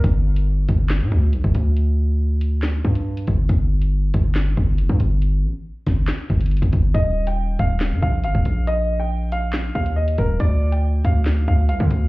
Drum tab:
HH |x-----x-----x---x-------x---x---|x-----------x---x-----x---x-x---|x-----x-----x---x-------x---x---|x-----------x---x-----xxxxx-x---|
CP |----------------x---------------|----------------x---------------|----------------x---------------|----------------x---------------|
SD |----------------o---------------|----------------o---------------|----------------o---------------|------------o---o---------------|
BD |o-----------o-------o-----o-----|--------------------o-------o---|o-----------o-------o-----o-----|------------o-------o-----o-o---|

HH |x-----x-----x---x-------x---x---|x-----------x---x-----x---x-x---|x-----x-----x---x-------x---x---|
CP |----------------x---------------|----------------x---------------|----------------x---------------|
SD |----------------o---------------|----------------o---------------|----------------o---------------|
BD |o-----------o-------o-----o-----|--------------------o-------o---|o-----------o-------o-----o-----|